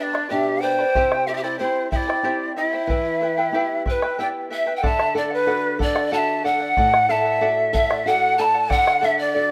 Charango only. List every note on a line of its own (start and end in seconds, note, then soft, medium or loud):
0.00 0.13 B4 medium
0.00 0.12 D5 medium
0.00 0.14 G5 medium
0.00 0.12 B5 medium
0.13 0.28 B4 soft
0.13 0.29 D5 medium
0.13 0.29 B5 medium
0.29 0.61 B4 medium
0.29 0.62 D5 medium
0.29 0.61 G5 medium
0.29 0.63 B5 medium
0.62 0.79 B4 medium
0.62 0.79 D5 medium
0.62 0.79 G5 medium
0.62 0.77 B5 medium
0.78 0.96 B4 medium
0.78 0.96 D5 medium
0.78 0.95 B5 medium
0.96 1.27 E4 medium
0.96 1.28 G4 medium
0.96 1.27 C5 medium
0.96 1.26 E5 medium
0.96 1.27 G5 medium
1.28 1.43 E4 medium
1.28 1.43 C5 medium
1.28 1.44 E5 medium
1.28 1.42 G5 medium
1.44 1.58 E4 soft
1.44 1.58 C5 medium
1.44 1.58 G5 medium
1.58 1.91 E4 medium
1.58 1.91 C5 medium
1.58 1.90 E5 medium
1.58 1.91 G5 medium
1.91 2.08 E4 medium
1.91 2.07 C5 medium
1.91 2.08 E5 medium
1.91 2.06 G5 medium
2.07 2.23 E4 medium
2.07 2.24 C5 medium
2.07 2.24 G5 medium
2.24 2.55 E4 medium
2.24 2.56 G4 medium
2.24 2.56 C5 medium
2.24 2.55 E5 medium
2.24 2.57 G5 medium
2.56 2.73 E4 medium
2.56 2.73 C5 medium
2.56 2.73 E5 medium
2.56 2.72 G5 medium
2.73 2.89 E4 soft
2.73 2.90 C5 medium
2.73 2.89 G5 medium
2.90 3.20 E4 medium
2.90 3.21 B4 medium
2.90 3.20 E5 medium
2.90 3.22 G5 medium
3.21 3.38 E4 medium
3.21 3.37 B4 medium
3.21 3.37 E5 medium
3.21 3.36 G5 medium
3.38 3.53 E4 medium
3.38 3.54 B4 medium
3.38 3.54 G5 medium
3.54 3.85 E4 medium
3.54 3.86 G4 medium
3.54 3.86 B4 medium
3.54 3.84 E5 medium
3.54 3.86 G5 medium
3.86 4.02 E4 medium
3.86 4.02 B4 medium
3.86 4.02 E5 medium
3.86 4.01 G5 medium
4.02 4.18 E4 medium
4.02 4.18 B4 medium
4.02 4.18 G5 medium
4.19 4.50 E4 medium
4.19 4.50 B4 medium
4.19 4.49 E5 medium
4.19 4.50 G5 medium
4.50 4.67 E4 medium
4.50 4.66 B4 medium
4.50 4.67 E5 medium
4.50 4.66 G5 medium
4.67 4.83 E4 medium
4.67 4.82 B4 medium
4.67 4.83 G5 medium
4.82 5.13 A4 medium
4.82 5.14 D5 medium
4.82 5.14 F#5 medium
5.14 5.31 A4 medium
5.14 5.31 D5 medium
5.14 5.29 F#5 medium
5.30 5.46 D5 soft
5.30 5.46 F#5 medium
5.46 5.77 A4 medium
5.46 5.78 D5 medium
5.46 5.79 F#5 medium
5.78 5.95 A4 medium
5.78 5.95 D5 medium
5.78 5.94 F#5 medium
5.95 6.10 D5 soft
5.95 6.11 F#5 medium
6.11 6.43 A4 medium
6.11 6.43 D5 medium
6.11 6.44 F#5 medium
6.44 6.60 A4 medium
6.44 6.60 D5 medium
6.44 6.59 F#5 medium
6.60 6.76 D5 medium
6.60 6.77 F#5 medium
6.77 7.07 A4 medium
6.77 7.08 D5 medium
6.77 7.09 F#5 medium
7.08 7.25 A4 medium
7.08 7.25 D5 medium
7.08 7.24 F#5 medium
7.25 7.40 D5 soft
7.25 7.41 F#5 medium
7.41 7.72 A4 medium
7.41 7.72 D5 medium
7.41 7.73 F#5 medium
7.73 7.89 A4 medium
7.73 7.90 D5 medium
7.73 7.88 F#5 medium
7.90 8.06 D5 medium
7.90 8.06 F#5 medium
8.07 8.37 A4 medium
8.07 8.38 D5 medium
8.07 8.38 F#5 medium
8.38 8.54 A4 medium
8.38 8.54 D5 medium
8.38 8.53 F#5 medium
8.54 8.68 D5 soft
8.54 8.69 F#5 medium
8.69 9.00 A4 medium
8.69 9.01 D5 medium
8.69 9.01 F#5 loud
9.01 9.18 A4 medium
9.01 9.18 D5 medium
9.01 9.17 F#5 medium
9.18 9.33 D5 soft
9.18 9.35 F#5 medium
9.34 9.52 A4 medium
9.34 9.52 D5 medium
9.34 9.52 F#5 medium